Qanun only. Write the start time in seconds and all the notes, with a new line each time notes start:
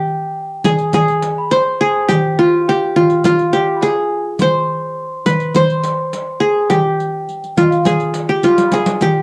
Already playing: G4
0.65 G#4
0.94 G#4
1.51 C5
1.81 G#4
2.09 G4
2.39 F4
2.69 G4
2.96 F4
3.25 F4
3.53 G4
3.83 G#4
4.42 C5
5.26 B4
5.56 C5
6.40 G#4
6.70 G4
7.58 F4
7.86 G#4
8.29 G4
8.44 F4
8.74 G#4
9.02 G4